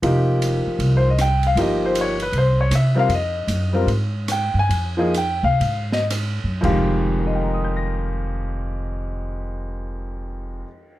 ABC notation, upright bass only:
X:1
M:4/4
L:1/8
Q:"Swing" 1/4=140
K:Fm
V:1 name="Upright bass" clef=bass
F,,,3 z C,,4 | G,,,4 C,,2 C,2 | F,,2 _G,,2 A,,3 =G,, | F,,3 C, A,,3 _G,, |
F,,,8- | F,,,8 |]